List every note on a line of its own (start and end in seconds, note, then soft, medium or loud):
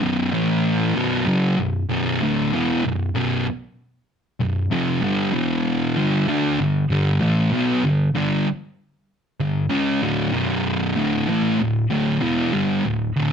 0.01 0.32 B1 loud
0.01 0.32 F#2 loud
0.01 0.33 B2 loud
0.32 0.94 A2 medium
0.32 0.94 E3 loud
0.32 0.95 A3 loud
0.95 1.25 B1 medium
0.95 1.25 F#2 medium
0.95 1.26 B2 loud
1.26 1.57 F#2 medium
1.26 1.57 C#3 medium
1.26 1.58 F#3 loud
1.58 1.83 B1 medium
1.58 1.83 F#2 medium
1.89 2.20 B1 medium
1.89 2.20 F#2 loud
1.89 2.21 B2 loud
2.21 2.51 D2 medium
2.21 2.52 A2 loud
2.21 2.52 D3 loud
2.53 2.83 E2 medium
2.53 2.83 B2 loud
2.53 2.83 E3 loud
2.84 3.09 B1 medium
2.84 3.09 F#2 medium
3.15 3.45 B1 medium
3.15 3.45 F#2 loud
3.15 3.46 B2 loud
4.40 4.65 B1 medium
4.40 4.65 F#2 medium
4.71 5.01 F2 medium
4.71 5.02 C3 loud
4.71 5.02 F3 loud
5.01 5.32 G2 loud
5.01 5.32 D3 loud
5.01 5.33 G3 loud
5.33 5.95 E2 medium
5.33 5.95 B2 loud
5.33 5.95 E3 loud
5.96 6.26 G2 medium
5.96 6.26 D3 loud
5.96 6.27 G3 loud
6.28 6.58 D3 medium
6.28 6.58 A3 medium
6.28 6.59 D4 loud
6.60 6.84 G2 medium
6.60 6.85 D3 medium
6.90 7.20 G2 loud
6.90 7.21 D3 loud
6.90 7.21 G3 loud
7.21 7.51 A2 medium
7.21 7.52 E3 loud
7.21 7.52 A3 medium
7.52 7.83 B2 medium
7.52 7.83 F#3 loud
7.52 7.83 B3 loud
7.83 8.09 G2 medium
7.83 8.09 D3 medium
8.14 8.45 G2 medium
8.14 8.46 D3 medium
8.14 8.46 G3 loud
9.40 9.65 G2 medium
9.40 9.65 D3 medium
9.70 10.01 C#3 medium
9.70 10.01 G#3 loud
9.70 10.02 C#4 loud
10.02 10.32 D2 loud
10.02 10.33 A2 loud
10.02 10.33 D3 medium
10.33 10.95 B1 loud
10.33 10.95 F#2 loud
10.33 10.96 B2 loud
10.95 11.26 D2 medium
10.95 11.26 A2 loud
10.95 11.27 D3 loud
11.28 11.58 A2 medium
11.28 11.58 E3 medium
11.28 11.59 A3 loud
11.59 11.84 D2 medium
11.59 11.84 A2 medium
11.90 12.20 D2 medium
11.90 12.21 A2 loud
11.90 12.21 D3 loud
12.21 12.51 E2 medium
12.21 12.52 B2 medium
12.21 12.52 E3 loud
12.52 12.83 G2 medium
12.52 12.83 D3 medium
12.52 12.84 G3 loud
12.85 13.10 D2 medium
12.85 13.09 A2 medium
13.16 13.33 D2 loud
13.16 13.33 A2 medium
13.16 13.33 D3 loud